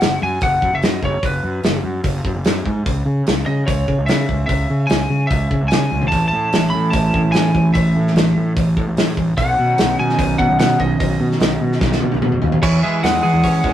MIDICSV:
0, 0, Header, 1, 5, 480
1, 0, Start_track
1, 0, Key_signature, 4, "major"
1, 0, Tempo, 406780
1, 1456, Time_signature, 4, 2, 24, 8
1, 16205, End_track
2, 0, Start_track
2, 0, Title_t, "Lead electric guitar"
2, 0, Program_c, 0, 29
2, 0, Note_on_c, 0, 78, 93
2, 214, Note_off_c, 0, 78, 0
2, 274, Note_on_c, 0, 80, 90
2, 502, Note_off_c, 0, 80, 0
2, 506, Note_on_c, 0, 78, 88
2, 872, Note_off_c, 0, 78, 0
2, 883, Note_on_c, 0, 76, 80
2, 1001, Note_off_c, 0, 76, 0
2, 1001, Note_on_c, 0, 75, 91
2, 1233, Note_off_c, 0, 75, 0
2, 1238, Note_on_c, 0, 73, 83
2, 1474, Note_off_c, 0, 73, 0
2, 1477, Note_on_c, 0, 71, 77
2, 2140, Note_off_c, 0, 71, 0
2, 4083, Note_on_c, 0, 75, 82
2, 4320, Note_off_c, 0, 75, 0
2, 4325, Note_on_c, 0, 73, 72
2, 4779, Note_off_c, 0, 73, 0
2, 4794, Note_on_c, 0, 76, 79
2, 5252, Note_off_c, 0, 76, 0
2, 5266, Note_on_c, 0, 76, 84
2, 5744, Note_on_c, 0, 80, 83
2, 5780, Note_off_c, 0, 76, 0
2, 6220, Note_on_c, 0, 76, 83
2, 6259, Note_off_c, 0, 80, 0
2, 6687, Note_off_c, 0, 76, 0
2, 6704, Note_on_c, 0, 80, 96
2, 7168, Note_off_c, 0, 80, 0
2, 7172, Note_on_c, 0, 81, 98
2, 7394, Note_off_c, 0, 81, 0
2, 7408, Note_on_c, 0, 81, 99
2, 7905, Note_on_c, 0, 83, 96
2, 7932, Note_off_c, 0, 81, 0
2, 8148, Note_on_c, 0, 81, 90
2, 8173, Note_off_c, 0, 83, 0
2, 8632, Note_off_c, 0, 81, 0
2, 8637, Note_on_c, 0, 80, 96
2, 9097, Note_off_c, 0, 80, 0
2, 9129, Note_on_c, 0, 76, 86
2, 10051, Note_off_c, 0, 76, 0
2, 11065, Note_on_c, 0, 78, 106
2, 11789, Note_off_c, 0, 78, 0
2, 11794, Note_on_c, 0, 80, 103
2, 12248, Note_off_c, 0, 80, 0
2, 12252, Note_on_c, 0, 78, 98
2, 12482, Note_off_c, 0, 78, 0
2, 12502, Note_on_c, 0, 78, 92
2, 12746, Note_on_c, 0, 75, 87
2, 12751, Note_off_c, 0, 78, 0
2, 12966, Note_off_c, 0, 75, 0
2, 12980, Note_on_c, 0, 75, 78
2, 14373, Note_off_c, 0, 75, 0
2, 14904, Note_on_c, 0, 73, 93
2, 15136, Note_off_c, 0, 73, 0
2, 15142, Note_on_c, 0, 76, 82
2, 15375, Note_off_c, 0, 76, 0
2, 15381, Note_on_c, 0, 78, 81
2, 16205, Note_off_c, 0, 78, 0
2, 16205, End_track
3, 0, Start_track
3, 0, Title_t, "Clean electric guitar"
3, 0, Program_c, 1, 27
3, 7208, Note_on_c, 1, 45, 72
3, 7220, Note_on_c, 1, 52, 66
3, 7228, Note_on_c, 1, 57, 67
3, 7238, Note_on_c, 1, 61, 84
3, 7245, Note_on_c, 1, 64, 83
3, 11049, Note_off_c, 1, 45, 0
3, 11054, Note_on_c, 1, 47, 68
3, 11059, Note_off_c, 1, 52, 0
3, 11064, Note_on_c, 1, 51, 88
3, 11068, Note_off_c, 1, 57, 0
3, 11074, Note_on_c, 1, 54, 77
3, 11075, Note_off_c, 1, 61, 0
3, 11077, Note_off_c, 1, 64, 0
3, 11079, Note_on_c, 1, 61, 85
3, 11087, Note_on_c, 1, 63, 86
3, 14894, Note_off_c, 1, 51, 0
3, 14896, Note_off_c, 1, 47, 0
3, 14898, Note_on_c, 1, 52, 73
3, 14906, Note_off_c, 1, 54, 0
3, 14909, Note_off_c, 1, 61, 0
3, 14913, Note_off_c, 1, 63, 0
3, 15142, Note_on_c, 1, 56, 64
3, 15363, Note_off_c, 1, 56, 0
3, 15377, Note_on_c, 1, 56, 66
3, 15612, Note_on_c, 1, 68, 67
3, 15857, Note_on_c, 1, 61, 66
3, 16080, Note_off_c, 1, 56, 0
3, 16094, Note_on_c, 1, 56, 62
3, 16205, Note_off_c, 1, 52, 0
3, 16205, Note_off_c, 1, 56, 0
3, 16205, Note_off_c, 1, 61, 0
3, 16205, Note_off_c, 1, 68, 0
3, 16205, End_track
4, 0, Start_track
4, 0, Title_t, "Fingered electric bass"
4, 0, Program_c, 2, 33
4, 21, Note_on_c, 2, 30, 84
4, 201, Note_off_c, 2, 30, 0
4, 261, Note_on_c, 2, 42, 89
4, 441, Note_off_c, 2, 42, 0
4, 494, Note_on_c, 2, 30, 91
4, 677, Note_off_c, 2, 30, 0
4, 733, Note_on_c, 2, 42, 82
4, 825, Note_off_c, 2, 42, 0
4, 862, Note_on_c, 2, 30, 76
4, 951, Note_off_c, 2, 30, 0
4, 982, Note_on_c, 2, 42, 96
4, 1162, Note_off_c, 2, 42, 0
4, 1210, Note_on_c, 2, 30, 104
4, 1395, Note_off_c, 2, 30, 0
4, 1454, Note_on_c, 2, 30, 83
4, 1637, Note_off_c, 2, 30, 0
4, 1695, Note_on_c, 2, 42, 88
4, 1878, Note_off_c, 2, 42, 0
4, 1933, Note_on_c, 2, 30, 85
4, 2117, Note_off_c, 2, 30, 0
4, 2164, Note_on_c, 2, 42, 85
4, 2352, Note_off_c, 2, 42, 0
4, 2408, Note_on_c, 2, 30, 102
4, 2594, Note_off_c, 2, 30, 0
4, 2645, Note_on_c, 2, 42, 85
4, 2741, Note_off_c, 2, 42, 0
4, 2773, Note_on_c, 2, 30, 81
4, 2866, Note_off_c, 2, 30, 0
4, 2894, Note_on_c, 2, 42, 89
4, 3079, Note_off_c, 2, 42, 0
4, 3134, Note_on_c, 2, 44, 104
4, 3319, Note_off_c, 2, 44, 0
4, 3376, Note_on_c, 2, 37, 84
4, 3560, Note_off_c, 2, 37, 0
4, 3604, Note_on_c, 2, 49, 95
4, 3793, Note_off_c, 2, 49, 0
4, 3855, Note_on_c, 2, 37, 79
4, 4039, Note_off_c, 2, 37, 0
4, 4090, Note_on_c, 2, 49, 88
4, 4277, Note_off_c, 2, 49, 0
4, 4343, Note_on_c, 2, 37, 97
4, 4525, Note_off_c, 2, 37, 0
4, 4580, Note_on_c, 2, 49, 87
4, 4672, Note_off_c, 2, 49, 0
4, 4699, Note_on_c, 2, 37, 80
4, 4791, Note_off_c, 2, 37, 0
4, 4820, Note_on_c, 2, 49, 96
4, 5003, Note_off_c, 2, 49, 0
4, 5062, Note_on_c, 2, 37, 101
4, 5245, Note_off_c, 2, 37, 0
4, 5300, Note_on_c, 2, 37, 92
4, 5483, Note_off_c, 2, 37, 0
4, 5542, Note_on_c, 2, 49, 94
4, 5725, Note_off_c, 2, 49, 0
4, 5778, Note_on_c, 2, 37, 81
4, 5962, Note_off_c, 2, 37, 0
4, 6016, Note_on_c, 2, 49, 88
4, 6201, Note_off_c, 2, 49, 0
4, 6261, Note_on_c, 2, 37, 97
4, 6445, Note_off_c, 2, 37, 0
4, 6501, Note_on_c, 2, 49, 84
4, 6593, Note_off_c, 2, 49, 0
4, 6627, Note_on_c, 2, 37, 83
4, 6717, Note_off_c, 2, 37, 0
4, 6748, Note_on_c, 2, 49, 90
4, 6930, Note_off_c, 2, 49, 0
4, 6981, Note_on_c, 2, 37, 98
4, 7165, Note_off_c, 2, 37, 0
4, 7220, Note_on_c, 2, 33, 91
4, 7405, Note_off_c, 2, 33, 0
4, 7465, Note_on_c, 2, 45, 91
4, 7648, Note_off_c, 2, 45, 0
4, 7706, Note_on_c, 2, 33, 80
4, 7889, Note_off_c, 2, 33, 0
4, 7953, Note_on_c, 2, 45, 88
4, 8133, Note_off_c, 2, 45, 0
4, 8186, Note_on_c, 2, 33, 101
4, 8369, Note_off_c, 2, 33, 0
4, 8423, Note_on_c, 2, 45, 82
4, 8516, Note_off_c, 2, 45, 0
4, 8556, Note_on_c, 2, 33, 84
4, 8644, Note_off_c, 2, 33, 0
4, 8672, Note_on_c, 2, 45, 100
4, 8852, Note_off_c, 2, 45, 0
4, 8905, Note_on_c, 2, 33, 103
4, 9088, Note_off_c, 2, 33, 0
4, 9151, Note_on_c, 2, 33, 97
4, 9332, Note_off_c, 2, 33, 0
4, 9389, Note_on_c, 2, 45, 94
4, 9571, Note_off_c, 2, 45, 0
4, 9616, Note_on_c, 2, 33, 87
4, 9803, Note_off_c, 2, 33, 0
4, 9875, Note_on_c, 2, 45, 85
4, 10054, Note_off_c, 2, 45, 0
4, 10110, Note_on_c, 2, 33, 102
4, 10291, Note_off_c, 2, 33, 0
4, 10346, Note_on_c, 2, 45, 82
4, 10438, Note_off_c, 2, 45, 0
4, 10476, Note_on_c, 2, 33, 83
4, 10564, Note_off_c, 2, 33, 0
4, 10593, Note_on_c, 2, 45, 93
4, 10773, Note_off_c, 2, 45, 0
4, 10823, Note_on_c, 2, 33, 97
4, 11007, Note_off_c, 2, 33, 0
4, 11060, Note_on_c, 2, 35, 90
4, 11245, Note_off_c, 2, 35, 0
4, 11314, Note_on_c, 2, 47, 92
4, 11493, Note_off_c, 2, 47, 0
4, 11549, Note_on_c, 2, 35, 85
4, 11730, Note_off_c, 2, 35, 0
4, 11784, Note_on_c, 2, 47, 99
4, 11967, Note_off_c, 2, 47, 0
4, 12024, Note_on_c, 2, 35, 104
4, 12207, Note_off_c, 2, 35, 0
4, 12263, Note_on_c, 2, 47, 85
4, 12355, Note_off_c, 2, 47, 0
4, 12384, Note_on_c, 2, 35, 82
4, 12476, Note_off_c, 2, 35, 0
4, 12496, Note_on_c, 2, 47, 97
4, 12682, Note_off_c, 2, 47, 0
4, 12742, Note_on_c, 2, 35, 99
4, 12925, Note_off_c, 2, 35, 0
4, 12984, Note_on_c, 2, 35, 84
4, 13167, Note_off_c, 2, 35, 0
4, 13215, Note_on_c, 2, 47, 99
4, 13401, Note_off_c, 2, 47, 0
4, 13462, Note_on_c, 2, 35, 88
4, 13645, Note_off_c, 2, 35, 0
4, 13702, Note_on_c, 2, 47, 96
4, 13885, Note_off_c, 2, 47, 0
4, 13937, Note_on_c, 2, 35, 103
4, 14122, Note_off_c, 2, 35, 0
4, 14198, Note_on_c, 2, 47, 90
4, 14283, Note_off_c, 2, 47, 0
4, 14320, Note_on_c, 2, 35, 81
4, 14405, Note_off_c, 2, 35, 0
4, 14430, Note_on_c, 2, 47, 92
4, 14610, Note_off_c, 2, 47, 0
4, 14663, Note_on_c, 2, 39, 100
4, 14845, Note_off_c, 2, 39, 0
4, 14900, Note_on_c, 2, 40, 87
4, 15083, Note_off_c, 2, 40, 0
4, 15145, Note_on_c, 2, 52, 83
4, 15326, Note_off_c, 2, 52, 0
4, 15379, Note_on_c, 2, 40, 87
4, 15562, Note_off_c, 2, 40, 0
4, 15616, Note_on_c, 2, 52, 102
4, 15709, Note_off_c, 2, 52, 0
4, 15732, Note_on_c, 2, 40, 81
4, 15827, Note_off_c, 2, 40, 0
4, 15859, Note_on_c, 2, 52, 110
4, 15951, Note_off_c, 2, 52, 0
4, 16093, Note_on_c, 2, 40, 93
4, 16205, Note_off_c, 2, 40, 0
4, 16205, End_track
5, 0, Start_track
5, 0, Title_t, "Drums"
5, 10, Note_on_c, 9, 46, 50
5, 23, Note_on_c, 9, 38, 111
5, 128, Note_off_c, 9, 46, 0
5, 141, Note_off_c, 9, 38, 0
5, 484, Note_on_c, 9, 46, 46
5, 494, Note_on_c, 9, 36, 110
5, 602, Note_off_c, 9, 46, 0
5, 612, Note_off_c, 9, 36, 0
5, 734, Note_on_c, 9, 36, 77
5, 852, Note_off_c, 9, 36, 0
5, 973, Note_on_c, 9, 46, 49
5, 986, Note_on_c, 9, 38, 110
5, 1091, Note_off_c, 9, 46, 0
5, 1104, Note_off_c, 9, 38, 0
5, 1210, Note_on_c, 9, 36, 74
5, 1328, Note_off_c, 9, 36, 0
5, 1450, Note_on_c, 9, 46, 44
5, 1451, Note_on_c, 9, 36, 95
5, 1568, Note_off_c, 9, 46, 0
5, 1569, Note_off_c, 9, 36, 0
5, 1929, Note_on_c, 9, 46, 49
5, 1942, Note_on_c, 9, 38, 108
5, 2047, Note_off_c, 9, 46, 0
5, 2060, Note_off_c, 9, 38, 0
5, 2406, Note_on_c, 9, 46, 50
5, 2410, Note_on_c, 9, 36, 98
5, 2524, Note_off_c, 9, 46, 0
5, 2528, Note_off_c, 9, 36, 0
5, 2651, Note_on_c, 9, 36, 82
5, 2769, Note_off_c, 9, 36, 0
5, 2886, Note_on_c, 9, 46, 53
5, 2899, Note_on_c, 9, 38, 121
5, 3004, Note_off_c, 9, 46, 0
5, 3017, Note_off_c, 9, 38, 0
5, 3133, Note_on_c, 9, 36, 74
5, 3251, Note_off_c, 9, 36, 0
5, 3376, Note_on_c, 9, 36, 100
5, 3377, Note_on_c, 9, 46, 48
5, 3494, Note_off_c, 9, 36, 0
5, 3495, Note_off_c, 9, 46, 0
5, 3854, Note_on_c, 9, 46, 54
5, 3867, Note_on_c, 9, 38, 110
5, 3972, Note_off_c, 9, 46, 0
5, 3985, Note_off_c, 9, 38, 0
5, 4339, Note_on_c, 9, 36, 107
5, 4340, Note_on_c, 9, 46, 50
5, 4457, Note_off_c, 9, 36, 0
5, 4458, Note_off_c, 9, 46, 0
5, 4579, Note_on_c, 9, 36, 75
5, 4697, Note_off_c, 9, 36, 0
5, 4818, Note_on_c, 9, 46, 51
5, 4831, Note_on_c, 9, 38, 111
5, 4936, Note_off_c, 9, 46, 0
5, 4949, Note_off_c, 9, 38, 0
5, 5060, Note_on_c, 9, 36, 77
5, 5178, Note_off_c, 9, 36, 0
5, 5299, Note_on_c, 9, 46, 46
5, 5300, Note_on_c, 9, 36, 100
5, 5417, Note_off_c, 9, 46, 0
5, 5418, Note_off_c, 9, 36, 0
5, 5778, Note_on_c, 9, 46, 50
5, 5791, Note_on_c, 9, 38, 111
5, 5896, Note_off_c, 9, 46, 0
5, 5909, Note_off_c, 9, 38, 0
5, 6262, Note_on_c, 9, 36, 107
5, 6262, Note_on_c, 9, 46, 46
5, 6380, Note_off_c, 9, 36, 0
5, 6380, Note_off_c, 9, 46, 0
5, 6500, Note_on_c, 9, 36, 76
5, 6618, Note_off_c, 9, 36, 0
5, 6736, Note_on_c, 9, 46, 50
5, 6749, Note_on_c, 9, 38, 117
5, 6854, Note_off_c, 9, 46, 0
5, 6867, Note_off_c, 9, 38, 0
5, 6979, Note_on_c, 9, 48, 51
5, 7097, Note_off_c, 9, 48, 0
5, 7100, Note_on_c, 9, 43, 79
5, 7218, Note_off_c, 9, 43, 0
5, 7219, Note_on_c, 9, 46, 50
5, 7222, Note_on_c, 9, 36, 91
5, 7337, Note_off_c, 9, 46, 0
5, 7340, Note_off_c, 9, 36, 0
5, 7701, Note_on_c, 9, 46, 55
5, 7714, Note_on_c, 9, 38, 117
5, 7819, Note_off_c, 9, 46, 0
5, 7832, Note_off_c, 9, 38, 0
5, 8179, Note_on_c, 9, 46, 53
5, 8183, Note_on_c, 9, 36, 107
5, 8297, Note_off_c, 9, 46, 0
5, 8301, Note_off_c, 9, 36, 0
5, 8426, Note_on_c, 9, 36, 80
5, 8544, Note_off_c, 9, 36, 0
5, 8659, Note_on_c, 9, 46, 49
5, 8672, Note_on_c, 9, 38, 112
5, 8777, Note_off_c, 9, 46, 0
5, 8790, Note_off_c, 9, 38, 0
5, 8905, Note_on_c, 9, 36, 74
5, 9023, Note_off_c, 9, 36, 0
5, 9141, Note_on_c, 9, 46, 46
5, 9147, Note_on_c, 9, 36, 99
5, 9259, Note_off_c, 9, 46, 0
5, 9265, Note_off_c, 9, 36, 0
5, 9525, Note_on_c, 9, 38, 33
5, 9628, Note_on_c, 9, 46, 47
5, 9641, Note_off_c, 9, 38, 0
5, 9641, Note_on_c, 9, 38, 108
5, 9746, Note_off_c, 9, 46, 0
5, 9759, Note_off_c, 9, 38, 0
5, 10109, Note_on_c, 9, 36, 102
5, 10112, Note_on_c, 9, 46, 48
5, 10227, Note_off_c, 9, 36, 0
5, 10230, Note_off_c, 9, 46, 0
5, 10347, Note_on_c, 9, 36, 82
5, 10465, Note_off_c, 9, 36, 0
5, 10587, Note_on_c, 9, 46, 54
5, 10600, Note_on_c, 9, 38, 108
5, 10705, Note_off_c, 9, 46, 0
5, 10718, Note_off_c, 9, 38, 0
5, 10824, Note_on_c, 9, 36, 77
5, 10942, Note_off_c, 9, 36, 0
5, 11064, Note_on_c, 9, 36, 102
5, 11065, Note_on_c, 9, 46, 51
5, 11182, Note_off_c, 9, 36, 0
5, 11183, Note_off_c, 9, 46, 0
5, 11541, Note_on_c, 9, 46, 55
5, 11554, Note_on_c, 9, 38, 112
5, 11659, Note_off_c, 9, 46, 0
5, 11672, Note_off_c, 9, 38, 0
5, 11911, Note_on_c, 9, 38, 32
5, 12021, Note_on_c, 9, 36, 103
5, 12023, Note_on_c, 9, 46, 57
5, 12029, Note_off_c, 9, 38, 0
5, 12139, Note_off_c, 9, 36, 0
5, 12141, Note_off_c, 9, 46, 0
5, 12262, Note_on_c, 9, 36, 82
5, 12380, Note_off_c, 9, 36, 0
5, 12500, Note_on_c, 9, 46, 54
5, 12513, Note_on_c, 9, 38, 117
5, 12618, Note_off_c, 9, 46, 0
5, 12631, Note_off_c, 9, 38, 0
5, 12741, Note_on_c, 9, 36, 74
5, 12859, Note_off_c, 9, 36, 0
5, 12983, Note_on_c, 9, 36, 104
5, 12988, Note_on_c, 9, 46, 47
5, 13101, Note_off_c, 9, 36, 0
5, 13106, Note_off_c, 9, 46, 0
5, 13354, Note_on_c, 9, 38, 30
5, 13457, Note_on_c, 9, 46, 50
5, 13470, Note_off_c, 9, 38, 0
5, 13470, Note_on_c, 9, 38, 111
5, 13575, Note_off_c, 9, 46, 0
5, 13588, Note_off_c, 9, 38, 0
5, 13832, Note_on_c, 9, 38, 33
5, 13939, Note_on_c, 9, 36, 106
5, 13940, Note_off_c, 9, 38, 0
5, 13940, Note_on_c, 9, 38, 56
5, 14057, Note_off_c, 9, 36, 0
5, 14058, Note_off_c, 9, 38, 0
5, 14067, Note_on_c, 9, 38, 54
5, 14172, Note_on_c, 9, 48, 71
5, 14185, Note_off_c, 9, 38, 0
5, 14290, Note_off_c, 9, 48, 0
5, 14299, Note_on_c, 9, 48, 66
5, 14417, Note_off_c, 9, 48, 0
5, 14421, Note_on_c, 9, 47, 85
5, 14539, Note_off_c, 9, 47, 0
5, 14539, Note_on_c, 9, 45, 71
5, 14652, Note_on_c, 9, 43, 79
5, 14657, Note_off_c, 9, 45, 0
5, 14770, Note_off_c, 9, 43, 0
5, 14777, Note_on_c, 9, 43, 84
5, 14895, Note_off_c, 9, 43, 0
5, 14901, Note_on_c, 9, 36, 100
5, 14902, Note_on_c, 9, 49, 101
5, 15019, Note_off_c, 9, 36, 0
5, 15020, Note_off_c, 9, 49, 0
5, 15384, Note_on_c, 9, 46, 59
5, 15397, Note_on_c, 9, 38, 103
5, 15502, Note_off_c, 9, 46, 0
5, 15515, Note_off_c, 9, 38, 0
5, 15856, Note_on_c, 9, 36, 83
5, 15857, Note_on_c, 9, 46, 56
5, 15974, Note_off_c, 9, 36, 0
5, 15975, Note_off_c, 9, 46, 0
5, 16095, Note_on_c, 9, 36, 76
5, 16205, Note_off_c, 9, 36, 0
5, 16205, End_track
0, 0, End_of_file